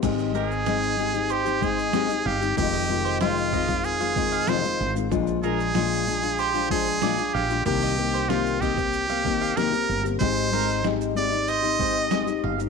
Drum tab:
CC |x---------------|----------------|----------------|----------------|
SH |xxxxxxxxxxxxxx-x|xxxxxxxxxxxxxx-x|xxxxxxxxxxxxxx-x|xxxxxxxxxx-xxxxx|
SD |----o----o--o---|----o----o--o---|----o----o--o---|----o----o--o---|
BD |o---------o-----|o-----oo--o-----|o---------o-----|o-----oo--o-----|

CC |----------------|
SH |xxxxxxxxxxxxxx-x|
SD |----o----o--o---|
BD |o---------o-----|